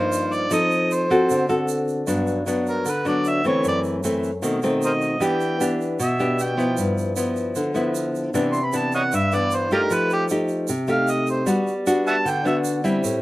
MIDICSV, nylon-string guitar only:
0, 0, Header, 1, 2, 480
1, 0, Start_track
1, 0, Key_signature, 1, "major"
1, 0, Tempo, 391389
1, 632, Time_signature, 4, 2, 24, 8
1, 16212, End_track
2, 0, Start_track
2, 0, Title_t, "Nylon-string guitar"
2, 0, Program_c, 0, 24
2, 0, Note_on_c, 0, 43, 68
2, 0, Note_on_c, 0, 53, 61
2, 0, Note_on_c, 0, 58, 62
2, 0, Note_on_c, 0, 63, 65
2, 591, Note_off_c, 0, 58, 0
2, 592, Note_off_c, 0, 53, 0
2, 594, Note_off_c, 0, 63, 0
2, 606, Note_off_c, 0, 43, 0
2, 621, Note_on_c, 0, 53, 69
2, 626, Note_on_c, 0, 60, 53
2, 631, Note_on_c, 0, 63, 57
2, 634, Note_on_c, 0, 69, 56
2, 1310, Note_off_c, 0, 60, 0
2, 1311, Note_off_c, 0, 63, 0
2, 1315, Note_off_c, 0, 69, 0
2, 1352, Note_on_c, 0, 60, 63
2, 1361, Note_on_c, 0, 66, 64
2, 1363, Note_on_c, 0, 69, 68
2, 1564, Note_off_c, 0, 53, 0
2, 1602, Note_on_c, 0, 50, 67
2, 1794, Note_off_c, 0, 60, 0
2, 1799, Note_off_c, 0, 66, 0
2, 1799, Note_off_c, 0, 69, 0
2, 1824, Note_on_c, 0, 60, 53
2, 1832, Note_on_c, 0, 66, 54
2, 1832, Note_on_c, 0, 69, 62
2, 2510, Note_off_c, 0, 60, 0
2, 2513, Note_off_c, 0, 66, 0
2, 2514, Note_off_c, 0, 69, 0
2, 2533, Note_off_c, 0, 50, 0
2, 2537, Note_on_c, 0, 43, 58
2, 2541, Note_on_c, 0, 54, 49
2, 2548, Note_on_c, 0, 59, 47
2, 2549, Note_on_c, 0, 62, 57
2, 2990, Note_off_c, 0, 54, 0
2, 2991, Note_off_c, 0, 59, 0
2, 2993, Note_off_c, 0, 62, 0
2, 3019, Note_on_c, 0, 54, 51
2, 3029, Note_on_c, 0, 59, 57
2, 3037, Note_on_c, 0, 62, 55
2, 3481, Note_off_c, 0, 43, 0
2, 3501, Note_on_c, 0, 50, 61
2, 3503, Note_off_c, 0, 54, 0
2, 3509, Note_off_c, 0, 59, 0
2, 3511, Note_off_c, 0, 62, 0
2, 3739, Note_on_c, 0, 54, 58
2, 3742, Note_on_c, 0, 59, 49
2, 3751, Note_on_c, 0, 62, 59
2, 4188, Note_off_c, 0, 54, 0
2, 4188, Note_off_c, 0, 59, 0
2, 4194, Note_off_c, 0, 62, 0
2, 4228, Note_on_c, 0, 52, 60
2, 4236, Note_on_c, 0, 57, 62
2, 4242, Note_on_c, 0, 60, 60
2, 4443, Note_off_c, 0, 50, 0
2, 4465, Note_on_c, 0, 42, 66
2, 4912, Note_off_c, 0, 52, 0
2, 4917, Note_off_c, 0, 57, 0
2, 4917, Note_off_c, 0, 60, 0
2, 4951, Note_on_c, 0, 52, 55
2, 4960, Note_on_c, 0, 57, 52
2, 4962, Note_on_c, 0, 60, 59
2, 5276, Note_off_c, 0, 52, 0
2, 5278, Note_off_c, 0, 57, 0
2, 5278, Note_off_c, 0, 60, 0
2, 5405, Note_off_c, 0, 42, 0
2, 5422, Note_on_c, 0, 47, 66
2, 5429, Note_on_c, 0, 51, 58
2, 5433, Note_on_c, 0, 57, 49
2, 5437, Note_on_c, 0, 60, 56
2, 5632, Note_off_c, 0, 51, 0
2, 5632, Note_off_c, 0, 57, 0
2, 5637, Note_off_c, 0, 60, 0
2, 5681, Note_on_c, 0, 51, 57
2, 5687, Note_on_c, 0, 57, 58
2, 5688, Note_on_c, 0, 60, 65
2, 6359, Note_off_c, 0, 51, 0
2, 6361, Note_off_c, 0, 60, 0
2, 6362, Note_off_c, 0, 57, 0
2, 6365, Note_off_c, 0, 47, 0
2, 6378, Note_on_c, 0, 52, 60
2, 6382, Note_on_c, 0, 59, 46
2, 6391, Note_on_c, 0, 62, 50
2, 6395, Note_on_c, 0, 67, 62
2, 6829, Note_off_c, 0, 59, 0
2, 6834, Note_off_c, 0, 62, 0
2, 6834, Note_off_c, 0, 67, 0
2, 6870, Note_on_c, 0, 59, 55
2, 6877, Note_on_c, 0, 62, 59
2, 6879, Note_on_c, 0, 67, 56
2, 7322, Note_off_c, 0, 52, 0
2, 7349, Note_off_c, 0, 59, 0
2, 7351, Note_on_c, 0, 47, 71
2, 7353, Note_off_c, 0, 62, 0
2, 7353, Note_off_c, 0, 67, 0
2, 7597, Note_on_c, 0, 59, 53
2, 7603, Note_on_c, 0, 62, 53
2, 7605, Note_on_c, 0, 67, 62
2, 8037, Note_off_c, 0, 59, 0
2, 8040, Note_off_c, 0, 62, 0
2, 8040, Note_off_c, 0, 67, 0
2, 8059, Note_on_c, 0, 53, 64
2, 8066, Note_on_c, 0, 59, 66
2, 8075, Note_on_c, 0, 64, 67
2, 8288, Note_off_c, 0, 47, 0
2, 8314, Note_on_c, 0, 43, 60
2, 8748, Note_off_c, 0, 53, 0
2, 8751, Note_off_c, 0, 59, 0
2, 8756, Note_off_c, 0, 64, 0
2, 8785, Note_on_c, 0, 53, 52
2, 8789, Note_on_c, 0, 59, 55
2, 8797, Note_on_c, 0, 64, 59
2, 9250, Note_off_c, 0, 43, 0
2, 9268, Note_on_c, 0, 50, 65
2, 9471, Note_off_c, 0, 53, 0
2, 9472, Note_off_c, 0, 59, 0
2, 9477, Note_off_c, 0, 64, 0
2, 9494, Note_on_c, 0, 53, 55
2, 9500, Note_on_c, 0, 59, 53
2, 9512, Note_on_c, 0, 64, 62
2, 10185, Note_off_c, 0, 53, 0
2, 10188, Note_off_c, 0, 59, 0
2, 10194, Note_off_c, 0, 64, 0
2, 10206, Note_off_c, 0, 50, 0
2, 10227, Note_on_c, 0, 52, 53
2, 10228, Note_on_c, 0, 48, 65
2, 10235, Note_on_c, 0, 59, 54
2, 10241, Note_on_c, 0, 62, 60
2, 10538, Note_off_c, 0, 52, 0
2, 10544, Note_off_c, 0, 59, 0
2, 10544, Note_off_c, 0, 62, 0
2, 10706, Note_on_c, 0, 52, 56
2, 10712, Note_on_c, 0, 59, 52
2, 10715, Note_on_c, 0, 62, 64
2, 11166, Note_off_c, 0, 48, 0
2, 11187, Note_off_c, 0, 52, 0
2, 11187, Note_off_c, 0, 59, 0
2, 11191, Note_off_c, 0, 62, 0
2, 11194, Note_on_c, 0, 43, 71
2, 11435, Note_on_c, 0, 52, 52
2, 11441, Note_on_c, 0, 59, 56
2, 11449, Note_on_c, 0, 62, 66
2, 11876, Note_off_c, 0, 52, 0
2, 11877, Note_off_c, 0, 59, 0
2, 11882, Note_off_c, 0, 62, 0
2, 11912, Note_on_c, 0, 57, 65
2, 11917, Note_on_c, 0, 63, 57
2, 11925, Note_on_c, 0, 67, 68
2, 12129, Note_off_c, 0, 43, 0
2, 12148, Note_on_c, 0, 53, 61
2, 12593, Note_off_c, 0, 57, 0
2, 12594, Note_off_c, 0, 63, 0
2, 12600, Note_off_c, 0, 67, 0
2, 12639, Note_on_c, 0, 57, 55
2, 12646, Note_on_c, 0, 63, 54
2, 12649, Note_on_c, 0, 67, 55
2, 13085, Note_off_c, 0, 53, 0
2, 13112, Note_off_c, 0, 57, 0
2, 13112, Note_on_c, 0, 48, 66
2, 13116, Note_off_c, 0, 63, 0
2, 13116, Note_off_c, 0, 67, 0
2, 13342, Note_on_c, 0, 57, 63
2, 13351, Note_on_c, 0, 63, 55
2, 13357, Note_on_c, 0, 67, 64
2, 14027, Note_off_c, 0, 57, 0
2, 14032, Note_off_c, 0, 63, 0
2, 14035, Note_off_c, 0, 67, 0
2, 14047, Note_off_c, 0, 48, 0
2, 14057, Note_on_c, 0, 55, 66
2, 14061, Note_on_c, 0, 59, 52
2, 14065, Note_on_c, 0, 62, 51
2, 14072, Note_on_c, 0, 66, 56
2, 14372, Note_off_c, 0, 59, 0
2, 14376, Note_off_c, 0, 62, 0
2, 14380, Note_off_c, 0, 66, 0
2, 14551, Note_on_c, 0, 59, 55
2, 14557, Note_on_c, 0, 62, 60
2, 14558, Note_on_c, 0, 66, 61
2, 15000, Note_off_c, 0, 55, 0
2, 15025, Note_on_c, 0, 50, 69
2, 15232, Note_off_c, 0, 59, 0
2, 15233, Note_off_c, 0, 62, 0
2, 15233, Note_off_c, 0, 66, 0
2, 15266, Note_on_c, 0, 59, 57
2, 15274, Note_on_c, 0, 62, 57
2, 15280, Note_on_c, 0, 66, 62
2, 15710, Note_off_c, 0, 59, 0
2, 15711, Note_off_c, 0, 62, 0
2, 15712, Note_off_c, 0, 66, 0
2, 15746, Note_on_c, 0, 55, 66
2, 15753, Note_on_c, 0, 64, 72
2, 15755, Note_on_c, 0, 60, 69
2, 15962, Note_off_c, 0, 50, 0
2, 15988, Note_on_c, 0, 45, 68
2, 16212, Note_off_c, 0, 45, 0
2, 16212, Note_off_c, 0, 55, 0
2, 16212, Note_off_c, 0, 60, 0
2, 16212, Note_off_c, 0, 64, 0
2, 16212, End_track
0, 0, End_of_file